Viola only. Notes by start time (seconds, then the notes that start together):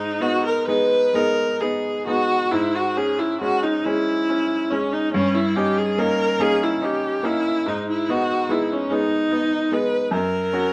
Already playing: D#4
0.22 F#4
0.46 A#4
0.67 B4
1.15 A#4
1.61 G#4
2.07 F#4
2.51 E4
2.75 F#4
2.97 G#4
3.19 E4
3.41 F#4
3.63 D#4
3.84 E4
4.71 C#4
4.93 D#4
5.14 C#4
5.34 E4
5.56 G4
5.78 G#4
5.99 A#4
6.41 G#4
6.63 E4
6.84 G4
7.25 E4
7.68 D#4
7.90 E4
8.10 F#4
8.51 E4
8.72 C#4
8.93 D#4
9.73 B4
10.13 A#4